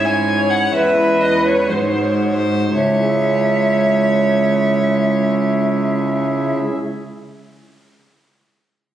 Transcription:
Already playing: G#2 G#3 C#4 E4 C#5
0.05 G#5
0.50 F#5
0.73 E2 B4 E5
1.21 D#5
1.46 C#5
1.67 G#2 G#3 D#4 F#4 C5
1.71 G#2
1.79 C#5
1.91 C5
2.01 C#5
2.12 C5
2.22 C#5
2.33 C5
2.73 C#2 C#3 C#5 E5
2.81 G#3
2.88 C#4
2.95 E4
3.01 G#4
3.09 E5

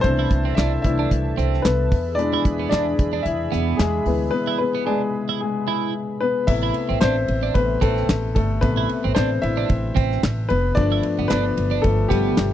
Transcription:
Already playing: E3 A3 B3 C4 D4 E4 A4 B4 E5 A5
0.00 E3 A3 C5
0.04 C2 C4 D4, kick, closed hi-hat
0.19 E4
0.30 C2, kick, closed hi-hat
0.45 C4
0.55 C2 D4 E5, snare, clap, closed hi-hat
0.59 E4
0.82 C2 E3 A3 D4 E4 E5, kick, closed hi-hat
0.99 D4
1.11 C2, kick, closed hi-hat
1.38 C2 C4, closed hi-hat
1.53 snare
1.62 C2 B3 B4, snare, clap, closed hi-hat
1.91 E2 G#4 B5, kick, open hi-hat
2.15 E3 G#3 B3 D5, closed hi-hat
2.19 D4
2.33 E4
2.45 E2, kick, closed hi-hat
2.59 B3
2.69 E2 D4 D5, snare, clap, closed hi-hat
2.74 D4
2.99 E2, kick, closed hi-hat
3.13 D4
3.23 E2 E4 E5, closed hi-hat
3.52 E2 B3, closed hi-hat
3.77 E2 G#4, snare, clap, closed hi-hat
3.81 G#3
4.06 D2 E3 G#3 B3, open hi-hat
4.31 B3 B4
4.47 E4
4.58 B3 B4
4.75 B3
4.86 G#3 D4 G#4
5.29 E4
5.40 G#3 G#4
5.68 E4
6.21 B3 B4
6.47 A1 C3 A3 B3 E4 E5, kick, crash
6.63 E4
6.74 ride
6.89 A1 C4
7.01 A1 C4 D4 C5, snare, clap, ride
7.28 A1, ride
7.43 D4
7.54 A1 C3 A3 B3 B4, kick, ride
7.81 A1 A3 C4 A4, kick, ride
7.97 snare
8.09 A1, snare, clap, ride
8.35 G1 A3 A4, kick, ride
8.61 A1 C3 A3 B3 B4, kick, ride
8.77 E4
8.89 ride
9.04 A1 C4
9.15 A1 C4 D4 C5, snare, clap, ride
9.42 A1 E4 E5, ride
9.57 D4
9.69 A1, kick, ride
9.96 A1 C4, kick, ride
10.12 snare
10.23 A1, snare, clap, ride
10.49 F1 B3 B4, ride
10.75 G1 F3 A3 B3 D4 D5, kick, ride
10.92 E4
11.03 ride
11.19 G1 B3
11.28 G1 B3 D4 B4, snare, clap, ride
11.57 G1, ride
11.71 D4
11.82 G1 F3 A3 B3 A4, kick, ride
12.08 G1 G3 B3 G4, kick, ride
12.37 G1, snare, clap, ride

